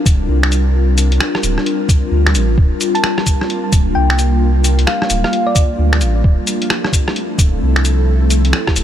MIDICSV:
0, 0, Header, 1, 5, 480
1, 0, Start_track
1, 0, Tempo, 458015
1, 783, Time_signature, 4, 2, 24, 8
1, 9260, End_track
2, 0, Start_track
2, 0, Title_t, "Synth pluck"
2, 0, Program_c, 0, 84
2, 3089, Note_on_c, 0, 81, 96
2, 3420, Note_off_c, 0, 81, 0
2, 4140, Note_on_c, 0, 79, 93
2, 4238, Note_off_c, 0, 79, 0
2, 4294, Note_on_c, 0, 79, 80
2, 4351, Note_off_c, 0, 79, 0
2, 5102, Note_on_c, 0, 77, 96
2, 5357, Note_off_c, 0, 77, 0
2, 5494, Note_on_c, 0, 77, 92
2, 5704, Note_off_c, 0, 77, 0
2, 5727, Note_on_c, 0, 74, 94
2, 5787, Note_off_c, 0, 74, 0
2, 5813, Note_on_c, 0, 74, 78
2, 5915, Note_off_c, 0, 74, 0
2, 9260, End_track
3, 0, Start_track
3, 0, Title_t, "Ambient pad"
3, 0, Program_c, 1, 92
3, 0, Note_on_c, 1, 55, 79
3, 0, Note_on_c, 1, 60, 80
3, 0, Note_on_c, 1, 62, 83
3, 0, Note_on_c, 1, 65, 85
3, 0, Note_on_c, 1, 70, 69
3, 2886, Note_on_c, 1, 58, 73
3, 3369, Note_off_c, 1, 60, 0
3, 6538, Note_off_c, 1, 70, 0
3, 6540, Note_off_c, 1, 58, 0
3, 6541, Note_off_c, 1, 55, 0
3, 6541, Note_off_c, 1, 65, 0
3, 6546, Note_on_c, 1, 53, 89
3, 6643, Note_on_c, 1, 57, 94
3, 6829, Note_on_c, 1, 64, 79
3, 6945, Note_on_c, 1, 60, 69
3, 6965, Note_on_c, 1, 69, 85
3, 7595, Note_off_c, 1, 62, 0
3, 9260, Note_off_c, 1, 53, 0
3, 9260, Note_off_c, 1, 57, 0
3, 9260, Note_off_c, 1, 60, 0
3, 9260, Note_off_c, 1, 64, 0
3, 9260, Note_off_c, 1, 69, 0
3, 9260, End_track
4, 0, Start_track
4, 0, Title_t, "Sub bass"
4, 0, Program_c, 2, 38
4, 60, Note_on_c, 2, 26, 94
4, 287, Note_off_c, 2, 26, 0
4, 297, Note_on_c, 2, 36, 86
4, 1248, Note_off_c, 2, 36, 0
4, 1499, Note_on_c, 2, 26, 105
4, 1640, Note_off_c, 2, 26, 0
4, 2215, Note_on_c, 2, 38, 97
4, 2460, Note_on_c, 2, 33, 92
4, 2476, Note_off_c, 2, 38, 0
4, 2687, Note_off_c, 2, 33, 0
4, 2701, Note_on_c, 2, 26, 102
4, 2841, Note_off_c, 2, 26, 0
4, 3905, Note_on_c, 2, 26, 98
4, 4130, Note_off_c, 2, 26, 0
4, 4146, Note_on_c, 2, 36, 86
4, 5093, Note_off_c, 2, 36, 0
4, 5343, Note_on_c, 2, 26, 98
4, 5482, Note_off_c, 2, 26, 0
4, 6063, Note_on_c, 2, 38, 98
4, 6304, Note_on_c, 2, 33, 91
4, 6320, Note_off_c, 2, 38, 0
4, 6529, Note_off_c, 2, 33, 0
4, 6543, Note_on_c, 2, 26, 104
4, 6682, Note_off_c, 2, 26, 0
4, 7738, Note_on_c, 2, 26, 92
4, 7966, Note_off_c, 2, 26, 0
4, 7992, Note_on_c, 2, 36, 88
4, 8936, Note_off_c, 2, 36, 0
4, 9181, Note_on_c, 2, 26, 101
4, 9260, Note_off_c, 2, 26, 0
4, 9260, End_track
5, 0, Start_track
5, 0, Title_t, "Drums"
5, 61, Note_on_c, 9, 36, 114
5, 66, Note_on_c, 9, 42, 55
5, 66, Note_on_c, 9, 69, 71
5, 165, Note_off_c, 9, 36, 0
5, 171, Note_off_c, 9, 42, 0
5, 171, Note_off_c, 9, 69, 0
5, 454, Note_on_c, 9, 26, 114
5, 544, Note_on_c, 9, 42, 55
5, 544, Note_on_c, 9, 69, 61
5, 559, Note_off_c, 9, 26, 0
5, 649, Note_off_c, 9, 42, 0
5, 649, Note_off_c, 9, 69, 0
5, 1023, Note_on_c, 9, 42, 57
5, 1023, Note_on_c, 9, 69, 73
5, 1128, Note_off_c, 9, 42, 0
5, 1128, Note_off_c, 9, 69, 0
5, 1173, Note_on_c, 9, 42, 31
5, 1263, Note_on_c, 9, 26, 114
5, 1263, Note_on_c, 9, 37, 52
5, 1277, Note_off_c, 9, 42, 0
5, 1367, Note_off_c, 9, 26, 0
5, 1367, Note_off_c, 9, 37, 0
5, 1414, Note_on_c, 9, 37, 63
5, 1503, Note_on_c, 9, 42, 55
5, 1503, Note_on_c, 9, 69, 65
5, 1518, Note_off_c, 9, 37, 0
5, 1607, Note_off_c, 9, 42, 0
5, 1607, Note_off_c, 9, 69, 0
5, 1653, Note_on_c, 9, 37, 50
5, 1744, Note_on_c, 9, 42, 31
5, 1758, Note_off_c, 9, 37, 0
5, 1848, Note_off_c, 9, 42, 0
5, 1979, Note_on_c, 9, 36, 108
5, 1984, Note_on_c, 9, 42, 57
5, 1984, Note_on_c, 9, 69, 71
5, 2084, Note_off_c, 9, 36, 0
5, 2089, Note_off_c, 9, 42, 0
5, 2089, Note_off_c, 9, 69, 0
5, 2374, Note_on_c, 9, 26, 109
5, 2374, Note_on_c, 9, 37, 36
5, 2461, Note_on_c, 9, 42, 56
5, 2461, Note_on_c, 9, 69, 60
5, 2479, Note_off_c, 9, 26, 0
5, 2479, Note_off_c, 9, 37, 0
5, 2566, Note_off_c, 9, 42, 0
5, 2566, Note_off_c, 9, 69, 0
5, 2701, Note_on_c, 9, 36, 118
5, 2805, Note_off_c, 9, 36, 0
5, 2942, Note_on_c, 9, 42, 56
5, 2942, Note_on_c, 9, 69, 75
5, 3047, Note_off_c, 9, 42, 0
5, 3047, Note_off_c, 9, 69, 0
5, 3093, Note_on_c, 9, 42, 31
5, 3182, Note_on_c, 9, 26, 109
5, 3182, Note_on_c, 9, 37, 49
5, 3198, Note_off_c, 9, 42, 0
5, 3287, Note_off_c, 9, 26, 0
5, 3287, Note_off_c, 9, 37, 0
5, 3331, Note_on_c, 9, 37, 61
5, 3422, Note_on_c, 9, 42, 55
5, 3422, Note_on_c, 9, 69, 65
5, 3423, Note_on_c, 9, 36, 61
5, 3436, Note_off_c, 9, 37, 0
5, 3527, Note_off_c, 9, 42, 0
5, 3527, Note_off_c, 9, 69, 0
5, 3528, Note_off_c, 9, 36, 0
5, 3578, Note_on_c, 9, 37, 49
5, 3667, Note_on_c, 9, 42, 30
5, 3683, Note_off_c, 9, 37, 0
5, 3772, Note_off_c, 9, 42, 0
5, 3904, Note_on_c, 9, 36, 103
5, 3905, Note_on_c, 9, 42, 54
5, 3905, Note_on_c, 9, 69, 75
5, 4009, Note_off_c, 9, 36, 0
5, 4010, Note_off_c, 9, 42, 0
5, 4010, Note_off_c, 9, 69, 0
5, 4297, Note_on_c, 9, 26, 108
5, 4387, Note_on_c, 9, 42, 54
5, 4387, Note_on_c, 9, 69, 63
5, 4402, Note_off_c, 9, 26, 0
5, 4492, Note_off_c, 9, 42, 0
5, 4492, Note_off_c, 9, 69, 0
5, 4866, Note_on_c, 9, 42, 52
5, 4866, Note_on_c, 9, 69, 81
5, 4971, Note_off_c, 9, 42, 0
5, 4971, Note_off_c, 9, 69, 0
5, 5017, Note_on_c, 9, 42, 31
5, 5106, Note_on_c, 9, 26, 105
5, 5106, Note_on_c, 9, 37, 54
5, 5122, Note_off_c, 9, 42, 0
5, 5211, Note_off_c, 9, 26, 0
5, 5211, Note_off_c, 9, 37, 0
5, 5259, Note_on_c, 9, 37, 67
5, 5343, Note_on_c, 9, 42, 54
5, 5343, Note_on_c, 9, 69, 70
5, 5364, Note_off_c, 9, 37, 0
5, 5448, Note_off_c, 9, 42, 0
5, 5448, Note_off_c, 9, 69, 0
5, 5495, Note_on_c, 9, 37, 53
5, 5585, Note_on_c, 9, 42, 30
5, 5600, Note_off_c, 9, 37, 0
5, 5690, Note_off_c, 9, 42, 0
5, 5823, Note_on_c, 9, 36, 97
5, 5824, Note_on_c, 9, 42, 53
5, 5824, Note_on_c, 9, 69, 81
5, 5928, Note_off_c, 9, 36, 0
5, 5928, Note_off_c, 9, 42, 0
5, 5928, Note_off_c, 9, 69, 0
5, 6212, Note_on_c, 9, 26, 106
5, 6212, Note_on_c, 9, 37, 38
5, 6299, Note_on_c, 9, 42, 50
5, 6299, Note_on_c, 9, 69, 63
5, 6317, Note_off_c, 9, 26, 0
5, 6317, Note_off_c, 9, 37, 0
5, 6403, Note_off_c, 9, 42, 0
5, 6403, Note_off_c, 9, 69, 0
5, 6542, Note_on_c, 9, 36, 115
5, 6647, Note_off_c, 9, 36, 0
5, 6782, Note_on_c, 9, 42, 58
5, 6782, Note_on_c, 9, 69, 83
5, 6887, Note_off_c, 9, 42, 0
5, 6887, Note_off_c, 9, 69, 0
5, 6935, Note_on_c, 9, 42, 31
5, 7023, Note_on_c, 9, 26, 100
5, 7023, Note_on_c, 9, 37, 54
5, 7040, Note_off_c, 9, 42, 0
5, 7128, Note_off_c, 9, 26, 0
5, 7128, Note_off_c, 9, 37, 0
5, 7174, Note_on_c, 9, 37, 69
5, 7260, Note_on_c, 9, 36, 60
5, 7267, Note_on_c, 9, 42, 56
5, 7267, Note_on_c, 9, 69, 68
5, 7278, Note_off_c, 9, 37, 0
5, 7365, Note_off_c, 9, 36, 0
5, 7372, Note_off_c, 9, 42, 0
5, 7372, Note_off_c, 9, 69, 0
5, 7417, Note_on_c, 9, 37, 54
5, 7505, Note_on_c, 9, 42, 30
5, 7522, Note_off_c, 9, 37, 0
5, 7610, Note_off_c, 9, 42, 0
5, 7740, Note_on_c, 9, 36, 101
5, 7744, Note_on_c, 9, 42, 56
5, 7744, Note_on_c, 9, 69, 80
5, 7844, Note_off_c, 9, 36, 0
5, 7849, Note_off_c, 9, 42, 0
5, 7849, Note_off_c, 9, 69, 0
5, 8134, Note_on_c, 9, 26, 106
5, 8226, Note_on_c, 9, 42, 55
5, 8226, Note_on_c, 9, 69, 68
5, 8239, Note_off_c, 9, 26, 0
5, 8330, Note_off_c, 9, 42, 0
5, 8330, Note_off_c, 9, 69, 0
5, 8703, Note_on_c, 9, 42, 59
5, 8703, Note_on_c, 9, 69, 77
5, 8808, Note_off_c, 9, 42, 0
5, 8808, Note_off_c, 9, 69, 0
5, 8853, Note_on_c, 9, 42, 32
5, 8940, Note_on_c, 9, 26, 104
5, 8940, Note_on_c, 9, 37, 56
5, 8958, Note_off_c, 9, 42, 0
5, 9045, Note_off_c, 9, 26, 0
5, 9045, Note_off_c, 9, 37, 0
5, 9091, Note_on_c, 9, 36, 56
5, 9091, Note_on_c, 9, 37, 70
5, 9183, Note_on_c, 9, 42, 58
5, 9183, Note_on_c, 9, 69, 68
5, 9196, Note_off_c, 9, 36, 0
5, 9196, Note_off_c, 9, 37, 0
5, 9260, Note_off_c, 9, 42, 0
5, 9260, Note_off_c, 9, 69, 0
5, 9260, End_track
0, 0, End_of_file